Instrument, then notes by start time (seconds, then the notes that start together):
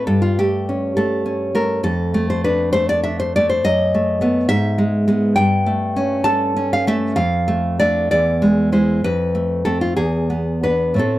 nylon-string guitar
0.07 G2 A4
0.22 F4
0.39 A3 G4
0.69 C#4
0.97 A3 A4
1.26 C#4
1.55 A3 A#4
1.83 F2 A4
2.14 A3
2.30 C5
2.44 D4 B4
2.73 A3 C5
2.89 D5
3.03 D4 E5
3.20 C5
3.36 A3 D5
3.49 C5
3.64 F#2 D#5
3.94 A3
4.21 A3 B3
4.49 G#2 E5
4.78 G#3
5.08 G#3 B3
5.36 G2 G5
5.66 A3
5.96 C#4
6.24 A4 A5
6.56 C#4
6.73 F5
6.87 A3 E5
7.16 F2 F5
7.48 A3
7.80 A3 D4 D5
8.11 E2 D5
8.42 G#3
8.72 G#3 E4 C5
9.04 F2 B4
9.35 A3
9.65 A3 C4 A4
9.81 F4
9.96 E2 G#4
10.30 B3
10.63 B3 D4 B4
10.94 A2 A3
10.98 C4 A4